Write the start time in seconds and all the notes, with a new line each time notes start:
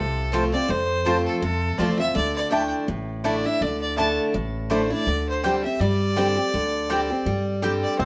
Already playing: C2 C3 A4
0.32 F3 A3 C4 F4 C5 A5
0.52 C4 F4 D5
0.68 F2 C5
1.05 F3 A3 C4 F4 C5 A5
1.25 A4
1.42 F2 C3 A4
1.78 E2 F3 A3 C4 F4 C5 D5 A5
1.98 C4 F4 E5
2.15 D2 D3 D5
2.36 D5
2.51 D3 A3 D4 E4 D5 G5 A5
2.88 A1 A2
3.24 D3 A3 D4 E4 D5 A5
3.45 D4 E4 E5
3.61 D2 D3 D5
3.82 D5
3.97 D3 A3 D4 E4 D5 A5
4.34 A1 A2
4.70 D3 A3 D4 E4 C5 D5 A5
4.90 D4 E4 D5
5.06 D2 D3
5.29 C5
5.44 D3 G3 C4 G4 C5 D5 G5
5.64 C4 G4 E5
5.80 G2 G3 D5
6.16 D3 G3 C4 G4 D5 G5
6.37 C4 G4
6.54 D2 D3
6.89 D3 G3 C4 G4 D5 G5
7.10 C4 G4
7.26 G2 G3
7.62 D3 G3 C4 G4 D5 G5
7.83 D5
7.99 C2 C3 C4 C5